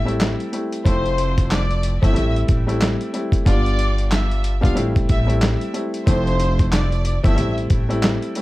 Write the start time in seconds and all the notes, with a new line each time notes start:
Already playing: A1
0.05 G3 A3 C4 E4, closed hi-hat
0.20 snare, clap, closed hi-hat
0.40 closed hi-hat
0.52 G3 A3 C4 E4, closed hi-hat
0.72 closed hi-hat
0.85 F1 F3 A3 C4 E4 C5, kick, closed hi-hat
1.06 closed hi-hat
1.18 closed hi-hat
1.38 kick, closed hi-hat
1.51 D5, snare, clap, closed hi-hat
1.71 closed hi-hat
1.83 closed hi-hat
2.02 G1 F3 A3 C4 E4 E5, kick, closed hi-hat
2.13 A1 G3 A3 C4 E4, closed hi-hat
2.36 closed hi-hat
2.48 A1, kick, closed hi-hat
2.67 G3 A3 C4 E4, closed hi-hat
2.81 snare, clap, closed hi-hat
3.01 closed hi-hat
3.13 G3 A3 C4 E4, closed hi-hat
3.32 kick, closed hi-hat
3.45 G1 G3 B3 D4 F4 D5, kick, closed hi-hat
3.66 closed hi-hat
3.79 closed hi-hat
3.98 closed hi-hat
4.12 E5, snare, clap, closed hi-hat
4.31 closed hi-hat
4.44 closed hi-hat
4.61 B1 G3 B3 D4 F4 F5, kick, closed hi-hat
4.75 A1 G3 A3 C4 E4, closed hi-hat
4.96 kick, closed hi-hat
5.09 A1 E5, kick, closed hi-hat
5.27 G3 A3 C4 E4, closed hi-hat
5.41 snare, clap, closed hi-hat
5.61 closed hi-hat
5.74 G3 A3 C4 E4, closed hi-hat
5.94 closed hi-hat
6.06 F1 F3 A3 C4 E4 C5, kick, closed hi-hat
6.27 closed hi-hat
6.40 closed hi-hat
6.59 kick, closed hi-hat
6.72 D5, snare, clap, closed hi-hat
6.92 closed hi-hat
7.05 closed hi-hat
7.23 G1 F3 A3 C4 E4 E5, kick, closed hi-hat
7.35 A1 G3 A3 C4 E4, closed hi-hat
7.58 closed hi-hat
7.70 A1, kick, closed hi-hat
7.89 G3 A3 C4 E4, closed hi-hat
8.02 snare, clap, closed hi-hat
8.22 closed hi-hat
8.35 G3 A3 C4 E4, closed hi-hat